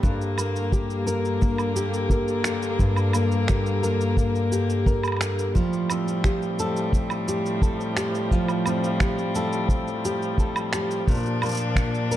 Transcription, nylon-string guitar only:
0, 0, Header, 1, 2, 480
1, 0, Start_track
1, 0, Key_signature, -1, "major"
1, 0, Tempo, 689655
1, 26, Time_signature, 4, 2, 24, 8
1, 8468, End_track
2, 0, Start_track
2, 0, Title_t, "Nylon-string guitar"
2, 0, Program_c, 0, 24
2, 0, Note_on_c, 0, 60, 58
2, 0, Note_on_c, 0, 67, 55
2, 0, Note_on_c, 0, 69, 58
2, 20, Note_on_c, 0, 43, 74
2, 73, Note_off_c, 0, 69, 0
2, 74, Note_off_c, 0, 60, 0
2, 262, Note_on_c, 0, 58, 56
2, 501, Note_off_c, 0, 67, 0
2, 504, Note_on_c, 0, 67, 60
2, 741, Note_on_c, 0, 70, 61
2, 973, Note_off_c, 0, 58, 0
2, 981, Note_on_c, 0, 58, 57
2, 1221, Note_off_c, 0, 67, 0
2, 1224, Note_on_c, 0, 67, 60
2, 1458, Note_off_c, 0, 70, 0
2, 1466, Note_on_c, 0, 70, 61
2, 1699, Note_off_c, 0, 67, 0
2, 1702, Note_on_c, 0, 67, 57
2, 1936, Note_off_c, 0, 43, 0
2, 1944, Note_on_c, 0, 43, 75
2, 2176, Note_off_c, 0, 58, 0
2, 2184, Note_on_c, 0, 58, 57
2, 2424, Note_off_c, 0, 67, 0
2, 2426, Note_on_c, 0, 67, 57
2, 2657, Note_off_c, 0, 70, 0
2, 2665, Note_on_c, 0, 70, 65
2, 2895, Note_off_c, 0, 58, 0
2, 2904, Note_on_c, 0, 58, 59
2, 3142, Note_off_c, 0, 67, 0
2, 3145, Note_on_c, 0, 67, 60
2, 3378, Note_off_c, 0, 70, 0
2, 3387, Note_on_c, 0, 70, 55
2, 3619, Note_off_c, 0, 67, 0
2, 3862, Note_on_c, 0, 53, 78
2, 3865, Note_off_c, 0, 43, 0
2, 3913, Note_off_c, 0, 58, 0
2, 3914, Note_off_c, 0, 70, 0
2, 4104, Note_on_c, 0, 60, 57
2, 4345, Note_on_c, 0, 67, 60
2, 4591, Note_on_c, 0, 69, 64
2, 4817, Note_off_c, 0, 60, 0
2, 4826, Note_on_c, 0, 60, 51
2, 5058, Note_off_c, 0, 67, 0
2, 5066, Note_on_c, 0, 67, 56
2, 5295, Note_off_c, 0, 69, 0
2, 5304, Note_on_c, 0, 69, 61
2, 5539, Note_off_c, 0, 67, 0
2, 5548, Note_on_c, 0, 67, 59
2, 5787, Note_off_c, 0, 53, 0
2, 5789, Note_on_c, 0, 53, 82
2, 6022, Note_off_c, 0, 60, 0
2, 6031, Note_on_c, 0, 60, 60
2, 6263, Note_off_c, 0, 67, 0
2, 6271, Note_on_c, 0, 67, 59
2, 6505, Note_off_c, 0, 69, 0
2, 6513, Note_on_c, 0, 69, 62
2, 6745, Note_off_c, 0, 60, 0
2, 6753, Note_on_c, 0, 60, 58
2, 6987, Note_off_c, 0, 67, 0
2, 6995, Note_on_c, 0, 67, 59
2, 7229, Note_off_c, 0, 69, 0
2, 7237, Note_on_c, 0, 69, 58
2, 7466, Note_off_c, 0, 67, 0
2, 7475, Note_on_c, 0, 67, 59
2, 7714, Note_on_c, 0, 46, 78
2, 7758, Note_off_c, 0, 60, 0
2, 7758, Note_off_c, 0, 67, 0
2, 7760, Note_off_c, 0, 69, 0
2, 7954, Note_on_c, 0, 58, 58
2, 8188, Note_on_c, 0, 62, 61
2, 8225, Note_off_c, 0, 53, 0
2, 8431, Note_on_c, 0, 70, 63
2, 8468, Note_off_c, 0, 46, 0
2, 8468, Note_off_c, 0, 58, 0
2, 8468, Note_off_c, 0, 62, 0
2, 8468, Note_off_c, 0, 70, 0
2, 8468, End_track
0, 0, End_of_file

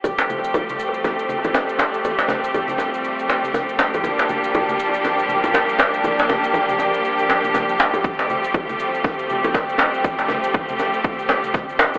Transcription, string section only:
0, 0, Header, 1, 2, 480
1, 0, Start_track
1, 0, Tempo, 500000
1, 43, Time_signature, 4, 2, 24, 8
1, 11505, End_track
2, 0, Start_track
2, 0, Title_t, "String section"
2, 0, Program_c, 0, 48
2, 39, Note_on_c, 0, 53, 70
2, 39, Note_on_c, 0, 67, 75
2, 40, Note_on_c, 0, 55, 62
2, 40, Note_on_c, 0, 57, 63
2, 40, Note_on_c, 0, 60, 62
2, 3843, Note_off_c, 0, 57, 0
2, 3844, Note_off_c, 0, 60, 0
2, 3883, Note_on_c, 0, 58, 65
2, 3884, Note_on_c, 0, 62, 64
2, 7685, Note_off_c, 0, 58, 0
2, 7685, Note_off_c, 0, 62, 0
2, 7724, Note_on_c, 0, 57, 64
2, 7724, Note_on_c, 0, 60, 64
2, 11505, Note_off_c, 0, 53, 0
2, 11505, Note_off_c, 0, 55, 0
2, 11505, Note_off_c, 0, 57, 0
2, 11505, Note_off_c, 0, 60, 0
2, 11505, Note_off_c, 0, 67, 0
2, 11505, End_track
0, 0, End_of_file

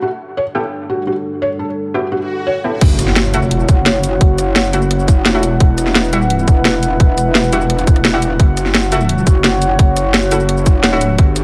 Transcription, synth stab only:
0, 0, Header, 1, 2, 480
1, 0, Start_track
1, 0, Tempo, 348837
1, 33, Time_signature, 4, 2, 24, 8
1, 15740, End_track
2, 0, Start_track
2, 0, Title_t, "Synth stab"
2, 0, Program_c, 0, 62
2, 753, Note_on_c, 0, 59, 85
2, 753, Note_on_c, 0, 67, 94
2, 754, Note_on_c, 0, 64, 80
2, 820, Note_off_c, 0, 59, 0
2, 820, Note_off_c, 0, 64, 0
2, 820, Note_off_c, 0, 67, 0
2, 2672, Note_on_c, 0, 64, 69
2, 2673, Note_on_c, 0, 59, 73
2, 2673, Note_on_c, 0, 67, 82
2, 2739, Note_off_c, 0, 64, 0
2, 2740, Note_off_c, 0, 59, 0
2, 2740, Note_off_c, 0, 67, 0
2, 3634, Note_on_c, 0, 59, 76
2, 3634, Note_on_c, 0, 64, 71
2, 3634, Note_on_c, 0, 67, 84
2, 3740, Note_off_c, 0, 59, 0
2, 3740, Note_off_c, 0, 64, 0
2, 3740, Note_off_c, 0, 67, 0
2, 4593, Note_on_c, 0, 57, 86
2, 4593, Note_on_c, 0, 64, 81
2, 4593, Note_on_c, 0, 66, 98
2, 4660, Note_off_c, 0, 57, 0
2, 4660, Note_off_c, 0, 64, 0
2, 4660, Note_off_c, 0, 66, 0
2, 6513, Note_on_c, 0, 57, 78
2, 6513, Note_on_c, 0, 64, 70
2, 6513, Note_on_c, 0, 66, 85
2, 6579, Note_off_c, 0, 64, 0
2, 6580, Note_off_c, 0, 57, 0
2, 6580, Note_off_c, 0, 66, 0
2, 7352, Note_on_c, 0, 57, 89
2, 7353, Note_on_c, 0, 64, 82
2, 7353, Note_on_c, 0, 66, 101
2, 7460, Note_off_c, 0, 57, 0
2, 7460, Note_off_c, 0, 64, 0
2, 7460, Note_off_c, 0, 66, 0
2, 8431, Note_on_c, 0, 55, 88
2, 8431, Note_on_c, 0, 64, 83
2, 8431, Note_on_c, 0, 66, 96
2, 8499, Note_off_c, 0, 55, 0
2, 8499, Note_off_c, 0, 64, 0
2, 8499, Note_off_c, 0, 66, 0
2, 10354, Note_on_c, 0, 55, 73
2, 10354, Note_on_c, 0, 64, 71
2, 10354, Note_on_c, 0, 66, 85
2, 10420, Note_off_c, 0, 55, 0
2, 10420, Note_off_c, 0, 64, 0
2, 10420, Note_off_c, 0, 66, 0
2, 11193, Note_on_c, 0, 55, 90
2, 11194, Note_on_c, 0, 64, 85
2, 11194, Note_on_c, 0, 66, 102
2, 11300, Note_off_c, 0, 55, 0
2, 11300, Note_off_c, 0, 64, 0
2, 11300, Note_off_c, 0, 66, 0
2, 12272, Note_on_c, 0, 57, 87
2, 12272, Note_on_c, 0, 64, 82
2, 12272, Note_on_c, 0, 66, 97
2, 12339, Note_off_c, 0, 57, 0
2, 12339, Note_off_c, 0, 64, 0
2, 12339, Note_off_c, 0, 66, 0
2, 14192, Note_on_c, 0, 57, 74
2, 14192, Note_on_c, 0, 64, 69
2, 14192, Note_on_c, 0, 66, 86
2, 14259, Note_off_c, 0, 57, 0
2, 14259, Note_off_c, 0, 64, 0
2, 14259, Note_off_c, 0, 66, 0
2, 15032, Note_on_c, 0, 57, 88
2, 15032, Note_on_c, 0, 64, 83
2, 15033, Note_on_c, 0, 66, 100
2, 15139, Note_off_c, 0, 57, 0
2, 15139, Note_off_c, 0, 64, 0
2, 15140, Note_off_c, 0, 66, 0
2, 15740, End_track
0, 0, End_of_file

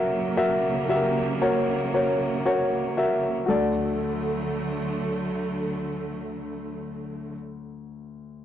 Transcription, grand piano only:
0, 0, Header, 1, 2, 480
1, 0, Start_track
1, 0, Key_signature, 2, "major"
1, 0, Tempo, 517241
1, 1306, Time_signature, 4, 2, 24, 8
1, 7841, End_track
2, 0, Start_track
2, 0, Title_t, "Grand piano"
2, 0, Program_c, 0, 0
2, 0, Control_c, 0, 64, 127
2, 0, Note_on_c, 0, 66, 57
2, 0, Note_on_c, 0, 70, 57
2, 0, Note_on_c, 0, 73, 69
2, 0, Note_on_c, 0, 76, 68
2, 301, Note_off_c, 0, 76, 0
2, 302, Note_off_c, 0, 66, 0
2, 303, Note_off_c, 0, 70, 0
2, 344, Note_on_c, 0, 70, 62
2, 346, Note_on_c, 0, 66, 67
2, 347, Note_on_c, 0, 76, 75
2, 775, Note_off_c, 0, 70, 0
2, 776, Note_off_c, 0, 66, 0
2, 776, Note_off_c, 0, 76, 0
2, 824, Note_on_c, 0, 66, 60
2, 827, Note_on_c, 0, 67, 46
2, 831, Note_on_c, 0, 76, 67
2, 884, Note_off_c, 0, 67, 0
2, 889, Note_on_c, 0, 70, 59
2, 1255, Note_off_c, 0, 66, 0
2, 1258, Note_off_c, 0, 76, 0
2, 1288, Note_off_c, 0, 70, 0
2, 1314, Note_off_c, 0, 73, 0
2, 1314, Note_on_c, 0, 66, 62
2, 1314, Note_on_c, 0, 73, 67
2, 1318, Note_on_c, 0, 70, 61
2, 1740, Note_off_c, 0, 66, 0
2, 1740, Note_off_c, 0, 73, 0
2, 1742, Note_off_c, 0, 70, 0
2, 1797, Note_on_c, 0, 70, 47
2, 1799, Note_on_c, 0, 66, 55
2, 1804, Note_on_c, 0, 73, 66
2, 2221, Note_off_c, 0, 70, 0
2, 2223, Note_off_c, 0, 66, 0
2, 2225, Note_off_c, 0, 73, 0
2, 2277, Note_on_c, 0, 70, 52
2, 2279, Note_on_c, 0, 66, 61
2, 2283, Note_on_c, 0, 73, 69
2, 2702, Note_off_c, 0, 70, 0
2, 2703, Note_off_c, 0, 66, 0
2, 2705, Note_off_c, 0, 73, 0
2, 2757, Note_on_c, 0, 66, 57
2, 2759, Note_on_c, 0, 70, 53
2, 2762, Note_on_c, 0, 76, 61
2, 3182, Note_off_c, 0, 66, 0
2, 3182, Note_off_c, 0, 70, 0
2, 3184, Note_off_c, 0, 76, 0
2, 3210, Note_on_c, 0, 66, 58
2, 3232, Note_on_c, 0, 38, 57
2, 3233, Note_on_c, 0, 69, 52
2, 3239, Control_c, 0, 64, 0
2, 3249, Note_on_c, 0, 74, 65
2, 3421, Control_c, 0, 64, 127
2, 6771, Note_off_c, 0, 66, 0
2, 6793, Note_off_c, 0, 38, 0
2, 6794, Note_off_c, 0, 69, 0
2, 6810, Note_off_c, 0, 74, 0
2, 7841, End_track
0, 0, End_of_file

